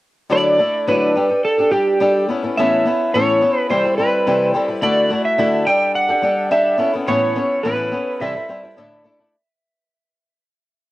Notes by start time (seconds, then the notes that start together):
0.30 D3 F#3 A3 D4 E4 A4 D5
0.59 A3 D4 E4 A4
0.87 D3 F#3 A3 D4 E4 A4 B4
1.15 G3 D4 G4 A4
1.29 D4 G4 A4
1.45 A4
1.58 D4 G4 A4
1.71 G3 D4 G4 A4
2.00 G3 D4 G4 A4
2.28 B3 C#4 E4 A4
2.43 B3 C#4 E4 A4
2.57 A2 E3 B3 C#4 E4 A4 E5
2.85 B3 C#4 E4 A4
3.14 A2 E3 B3 C#4 E4 A4 C#5
3.41 B3 C#4 E4 A4
3.59 B4
3.70 C3 E3 G3 C4 E4 A4 C5
3.84 G3 C4 E4 A4
3.98 G3 C4 E4 A4 B4
4.27 C3 E3 G3 C4 E4 A4
4.54 G3 C4 E4 A4
4.68 G3 C4 E4 A4
4.82 D3 A3 E4 F#4 A4 D5
5.10 A3 E4 F#4 A4
5.25 E5
5.38 D3 A3 E4 F#4 A4
5.67 G3 D4 G4 A4 G5
5.95 F#5
6.09 D4 G4 A4
6.22 G3 D4 G4 A4
6.51 G3 D4 G4 A4 E5
6.78 B3 C#4 E4 A4
6.93 B3 C#4 E4 A4
7.07 A2 E3 B3 C#4 E4 A4 C#5
7.36 B3 C#4 E4 A4
7.63 A2 E3 B3 C#4 E4 A4 B4
7.92 B3 C#4 E4 A4
8.20 C3 E3 G3 C4 E4 A4 E5
8.35 G3 C4 E4 A4
8.49 G3 C4 E4 A4
8.63 G3 C4 E4 A4
8.77 A2 D3 A3 D4 E4 A4
9.04 A3 D4 E4 A4
9.19 A3 D4 E4 A4